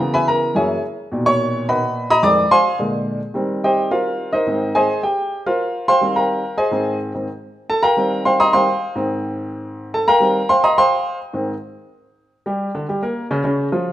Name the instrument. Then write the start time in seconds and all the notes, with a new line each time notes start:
upright piano
Already playing: A#4 A#5
0.00 C#3 E3 B3
0.14 B4 E5 G#5 B5
0.28 A#4 A#5
0.55 F#2 E3 A#3 G#4 C#5 E5 G#5
1.12 A#2 B2 D#3
1.26 C#5 C#6
1.68 B2 D#3 A#3 B4 D#5 F#5 B5
2.10 D#5 A#5 B5 D#6
2.23 F2 D#3 G#3 D5 D6
2.51 C5 F5 G#5 C6
2.79 A#2 D3 G#3
3.34 D#3 G3 C4
3.64 G4 C5 D#5 G5
3.91 F4 A#4 C5 F5
4.33 D#4 A#4 C5 D#5
4.47 G#2 D#3 C4
4.75 G#4 C5 D#5 G#5
5.03 G4 G5
5.46 F4 A#4 C5 F5
5.88 C5 F5 G5 C6
6.01 D#3 G3 C4
6.16 A#4 F5 G5 A#5
6.57 G#4 C5 D#5 G#5
6.71 G#2 D#3 C4
7.14 G#2 D#3 C4
7.70 A4 A5
7.83 A#4 F5 G5 A#5
7.97 D#3 G3 C4
8.25 C5 F5 G5 C6
8.40 D#5 A#5 C6 D#6
8.53 D#3 G3 C4 C5 F5 G5 C6
8.95 G#2 D#3 C4
9.94 A4 A5
10.08 A#4 F5 G5 A#5
10.20 D#3 G3 C4
10.49 C5 F5 G5 C6
10.64 D#5 A#5 C6 D#6
10.78 C5 F5 G5 C6
11.33 G#2 D#3 C4
12.46 G3 G4
12.75 D3 D4
12.89 G3 G4
13.02 A#3 A#4
13.31 C#3 C#4
13.44 C#3 C#4
13.72 F3 F4